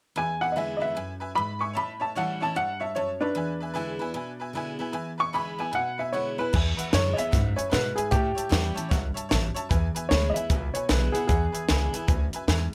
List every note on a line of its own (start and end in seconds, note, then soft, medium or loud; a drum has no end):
0.16 0.93 E2 medium
0.16 0.32 B4 medium
0.16 0.32 E5 medium
0.16 0.42 G#5 medium
0.16 0.33 G#5 loud
0.41 0.51 B4 medium
0.41 0.51 E5 medium
0.41 0.56 F#5 medium
0.41 0.52 G#5 medium
0.52 0.95 D3 medium
0.52 0.55 D#5 medium
0.56 0.95 G#3 medium
0.56 0.95 B3 medium
0.56 0.96 E4 medium
0.56 0.71 B4 loud
0.56 0.72 E5 medium
0.56 0.80 E5 medium
0.56 0.72 G#5 loud
0.77 0.90 B4 medium
0.77 0.79 D#5 medium
0.81 0.90 E5 medium
0.81 0.96 E5 loud
0.81 0.90 F#5 medium
0.95 1.35 F#2 medium
0.95 1.11 B4 medium
0.95 1.11 E5 medium
0.95 1.12 G#5 medium
1.20 1.30 B4 medium
1.20 1.30 E5 medium
1.20 1.30 G#5 medium
1.35 1.75 G#2 medium
1.35 1.51 B4 medium
1.35 1.51 E5 medium
1.35 1.60 B5 loud
1.35 1.52 B5 medium
1.59 1.69 B4 medium
1.59 1.70 E5 medium
1.59 1.70 G#5 medium
1.59 1.75 C#6 medium
1.73 2.53 A2 medium
1.73 1.90 C#5 medium
1.73 1.91 E5 medium
1.73 1.91 A5 loud
1.73 2.01 B5 medium
2.00 2.09 C#5 medium
2.00 2.10 E5 medium
2.00 2.15 A5 medium
2.00 2.10 A5 medium
2.15 2.40 E3 medium
2.15 2.40 G3 medium
2.15 2.41 C#4 medium
2.15 2.41 E4 medium
2.15 2.31 C#5 medium
2.15 2.31 E5 medium
2.15 2.41 F#5 medium
2.15 2.32 A5 loud
2.40 2.56 E4 medium
2.40 2.50 C#5 medium
2.40 2.50 E5 medium
2.40 2.50 A5 medium
2.40 2.56 A5 medium
2.45 2.57 C#4 medium
2.55 2.94 G2 medium
2.55 2.70 C#5 medium
2.55 2.71 E5 medium
2.55 2.81 F#5 medium
2.55 2.71 A5 medium
2.80 2.89 C#5 medium
2.80 2.90 E5 medium
2.80 2.95 E5 medium
2.80 2.90 A5 medium
2.95 3.34 F#2 medium
2.95 3.10 C#5 medium
2.95 3.20 C#5 medium
2.95 3.11 E5 medium
2.95 3.11 A5 medium
3.21 4.36 D4 medium
3.21 4.37 B4 medium
3.21 3.29 C#5 medium
3.21 3.30 E5 medium
3.21 3.30 A5 medium
3.35 4.12 E2 medium
3.35 3.51 B4 medium
3.35 3.51 E5 medium
3.35 3.51 G#5 loud
3.61 3.69 B4 medium
3.61 3.70 E5 medium
3.61 3.70 G#5 medium
3.74 3.99 D3 medium
3.74 4.00 G#3 medium
3.74 4.00 B3 medium
3.74 3.98 E4 medium
3.74 3.90 B4 loud
3.74 3.90 E5 loud
3.74 3.90 G#5 loud
3.99 4.15 B3 soft
3.99 4.14 E4 medium
3.99 4.09 B4 medium
3.99 4.09 E5 medium
3.99 4.10 G#5 loud
4.14 4.91 B2 medium
4.14 4.30 B4 medium
4.14 4.30 E5 medium
4.14 4.31 G#5 medium
4.40 4.49 B4 medium
4.40 4.49 E5 medium
4.40 4.50 G#5 medium
4.53 4.78 D3 medium
4.53 4.79 G#3 medium
4.53 4.79 B3 medium
4.53 4.78 E4 medium
4.53 4.70 B4 loud
4.53 4.70 E5 medium
4.53 4.71 G#5 loud
4.79 4.94 B3 soft
4.79 4.93 E4 medium
4.79 4.88 B4 medium
4.79 4.89 E5 medium
4.79 4.89 G#5 loud
4.92 5.70 E2 medium
4.92 5.09 B4 loud
4.92 5.09 E5 loud
4.92 5.09 G#5 loud
5.18 5.27 B4 medium
5.18 5.28 E5 medium
5.18 5.28 G#5 medium
5.18 5.34 C#6 loud
5.33 5.58 D3 medium
5.33 5.58 G#3 medium
5.33 5.58 B3 medium
5.33 5.57 E4 medium
5.33 5.49 B4 medium
5.33 5.49 E5 medium
5.33 5.50 G#5 loud
5.33 5.59 B5 medium
5.58 5.74 B3 soft
5.58 5.73 E4 medium
5.58 5.68 B4 medium
5.58 5.68 E5 medium
5.58 5.68 G#5 medium
5.58 5.74 G#5 medium
5.71 6.50 B2 medium
5.71 5.88 B4 medium
5.71 5.88 E5 medium
5.71 5.99 F#5 medium
5.71 5.89 G#5 medium
5.98 6.07 B4 medium
5.98 6.08 E5 medium
5.98 6.13 E5 medium
5.98 6.08 G#5 medium
6.12 6.37 D3 medium
6.12 6.38 G#3 medium
6.12 6.38 B3 medium
6.12 6.37 E4 medium
6.12 6.28 B4 medium
6.12 6.37 C#5 medium
6.12 6.28 E5 medium
6.12 6.29 F#5 loud
6.38 6.54 B3 soft
6.38 6.53 E4 medium
6.38 6.47 B4 medium
6.38 6.53 B4 medium
6.38 6.48 E5 medium
6.38 6.48 G#5 medium
6.53 7.29 E2 medium
6.53 6.78 E2 medium
6.53 6.68 B4 loud
6.53 6.69 E5 medium
6.53 6.69 G#5 loud
6.53 kick loud
6.53 crash loud
6.77 6.86 B4 medium
6.77 6.87 E5 medium
6.77 6.87 F#5 loud
6.77 muted upright bass stroke medium
6.77 closed hi-hat medium
6.91 7.17 F#2 medium
6.91 7.17 D3 medium
6.91 7.17 G#3 medium
6.91 7.18 B3 loud
6.91 7.07 B4 medium
6.91 7.18 C#5 loud
6.91 7.08 E5 medium
6.91 7.08 G#5 medium
6.91 snare loud
6.91 closed hi-hat medium
6.95 7.16 E4 loud
7.13 7.32 E4 medium
7.13 7.26 B4 medium
7.13 7.16 D#5 medium
7.13 7.26 E5 medium
7.13 7.26 G#5 medium
7.18 7.32 B3 medium
7.18 7.57 E5 loud
7.18 muted upright bass stroke medium
7.18 closed hi-hat medium
7.31 7.71 F#2 medium
7.31 7.57 G#2 medium
7.31 7.47 B4 medium
7.31 7.47 E5 medium
7.31 7.47 F#5 medium
7.31 kick loud
7.31 snare soft
7.31 closed hi-hat medium
7.56 7.66 B4 medium
7.56 7.71 C#5 medium
7.56 7.66 E5 medium
7.56 7.66 G#5 medium
7.56 muted upright bass stroke medium
7.56 closed hi-hat medium
7.70 8.10 G#2 medium
7.70 7.97 B2 medium
7.70 7.86 B4 medium
7.70 7.97 B4 medium
7.70 7.87 E5 medium
7.70 7.87 F#5 loud
7.70 snare loud
7.70 closed hi-hat medium
7.96 8.11 G#4 medium
7.96 8.05 B4 medium
7.96 8.06 E5 medium
7.96 8.07 G#5 loud
7.96 muted upright bass stroke medium
7.96 closed hi-hat medium
8.11 8.88 A2 medium
8.11 8.36 A2 medium
8.11 8.88 G4 medium
8.11 8.26 C#5 medium
8.11 8.27 E5 medium
8.11 8.27 A5 loud
8.11 kick loud
8.11 closed hi-hat medium
8.35 8.45 C#5 medium
8.35 8.46 E5 medium
8.35 8.46 A5 medium
8.35 muted upright bass stroke medium
8.35 closed hi-hat medium
8.49 8.76 E2 medium
8.49 8.74 E3 medium
8.49 8.75 G3 medium
8.49 8.75 C#4 loud
8.49 8.74 E4 medium
8.49 8.66 C#5 medium
8.49 8.66 E5 medium
8.49 8.67 F#5 medium
8.49 snare loud
8.49 closed hi-hat medium
8.74 8.91 C#4 soft
8.74 8.90 E4 medium
8.74 8.84 C#5 medium
8.74 8.85 E5 medium
8.74 8.85 A5 loud
8.74 muted upright bass stroke medium
8.74 closed hi-hat medium
8.89 9.16 C#2 medium
8.89 9.29 G2 medium
8.89 9.05 C#5 medium
8.89 9.06 E5 medium
8.89 9.06 F#5 medium
8.89 kick loud
8.89 snare soft
8.89 closed hi-hat medium
9.14 9.24 C#5 medium
9.14 9.24 E5 medium
9.14 9.25 A5 medium
9.14 muted upright bass stroke medium
9.14 closed hi-hat medium
9.29 9.55 A1 medium
9.29 9.69 F#2 medium
9.29 9.45 C#5 loud
9.29 9.46 E5 loud
9.29 9.46 A5 loud
9.29 snare loud
9.29 closed hi-hat medium
9.54 9.64 C#5 loud
9.54 9.64 E5 loud
9.54 9.65 A5 loud
9.54 muted upright bass stroke medium
9.54 closed hi-hat medium
9.69 10.47 E2 medium
9.69 9.95 E2 medium
9.69 9.85 B4 loud
9.69 9.85 E5 loud
9.69 9.86 G#5 loud
9.69 kick loud
9.69 closed hi-hat medium
9.95 10.04 B4 medium
9.95 10.05 E5 medium
9.95 10.05 G#5 loud
9.95 muted upright bass stroke medium
9.95 closed hi-hat medium
10.09 10.35 D2 medium
10.09 10.35 D3 medium
10.09 10.35 G#3 medium
10.09 10.35 B3 medium
10.09 10.35 E4 loud
10.09 10.25 B4 medium
10.09 10.34 C#5 medium
10.09 10.25 E5 medium
10.09 10.26 G#5 medium
10.09 snare loud
10.09 closed hi-hat medium
10.30 10.32 D#5 medium
10.34 10.50 E4 medium
10.34 10.44 B4 medium
10.34 10.73 E5 medium
10.34 10.44 E5 medium
10.34 10.45 G#5 medium
10.34 closed hi-hat medium
10.38 10.51 B3 soft
10.49 10.74 C#2 medium
10.49 11.26 B2 medium
10.49 10.65 B4 medium
10.49 10.65 E5 medium
10.49 10.65 G#5 medium
10.49 kick loud
10.49 closed hi-hat medium
10.74 10.83 B4 medium
10.74 10.88 C#5 medium
10.74 10.83 E5 medium
10.74 10.84 G#5 medium
10.74 muted upright bass stroke medium
10.74 closed hi-hat medium
10.89 11.14 B1 medium
10.89 11.13 D3 medium
10.89 11.14 G#3 medium
10.89 11.14 B3 medium
10.89 11.13 E4 loud
10.89 11.04 B4 medium
10.89 11.13 B4 medium
10.89 11.04 E5 medium
10.89 11.05 G#5 medium
10.89 snare loud
10.89 closed hi-hat medium
11.12 11.29 B3 medium
11.12 11.28 E4 medium
11.12 11.26 G#4 medium
11.12 11.23 B4 medium
11.12 11.23 E5 medium
11.12 11.23 F#5 loud
11.12 muted upright bass stroke medium
11.12 closed hi-hat medium
11.27 11.53 E2 medium
11.27 12.06 E2 medium
11.27 12.05 G#4 medium
11.27 11.43 B4 loud
11.27 11.44 E5 medium
11.27 11.44 F#5 loud
11.27 kick loud
11.27 closed hi-hat medium
11.52 11.62 B4 medium
11.52 11.62 E5 medium
11.52 11.63 G#5 medium
11.52 muted upright bass stroke medium
11.52 closed hi-hat medium
11.69 11.93 C#2 medium
11.69 11.92 D3 medium
11.69 11.93 G#3 medium
11.69 11.93 B3 medium
11.69 11.93 E4 medium
11.69 11.83 B4 medium
11.69 11.84 E5 medium
11.69 11.84 G#5 medium
11.69 snare loud
11.69 closed hi-hat medium
11.93 12.09 B3 soft
11.93 12.08 E4 medium
11.93 12.02 B4 medium
11.93 12.02 E5 medium
11.93 12.03 G#5 loud
11.93 muted upright bass stroke medium
11.93 closed hi-hat medium
12.07 12.32 D2 medium
12.07 12.46 F#2 medium
12.07 12.23 B4 medium
12.07 12.23 E5 medium
12.07 12.24 G#5 loud
12.07 kick loud
12.07 closed hi-hat medium
12.33 12.42 B4 medium
12.33 12.43 E5 medium
12.33 12.43 G#5 medium
12.33 muted upright bass stroke medium
12.33 closed hi-hat medium
12.48 12.72 E2 medium
12.48 12.74 G#2 medium
12.48 12.62 B4 loud
12.48 12.63 E5 medium
12.48 12.63 G#5 loud
12.48 snare loud
12.48 closed hi-hat medium